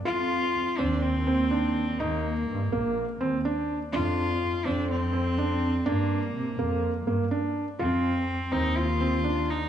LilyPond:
<<
  \new Staff \with { instrumentName = "Cello" } { \time 4/4 \key f \mixolydian \tempo 4 = 124 f'4. d'8 c'2 | bes2 r2 | f'4. d'8 c'2 | bes2 r2 |
c'4. ees'8 f'4. ees'8 | }
  \new Staff \with { instrumentName = "Felt piano" } { \time 4/4 \key f \mixolydian f'4 r8 c'4 c'8 d'4 | ees'4 r8 bes4 c'8 d'4 | d'4 r8 c'4 c'8 d'4 | d'4 r8 bes4 bes8 d'4 |
f'4 r8 c'4 c'8 d'4 | }
  \new Staff \with { instrumentName = "Double bass section" } { \clef bass \time 4/4 \key f \mixolydian f,4 r8 ees,2~ ees,8 | ees,4 g,8 bes,,4 ees,8 r4 | f,4 r8 f,2~ f,8 | g,4 c8 f,4 g,8 r4 |
f,4 r8 ees,2~ ees,8 | }
>>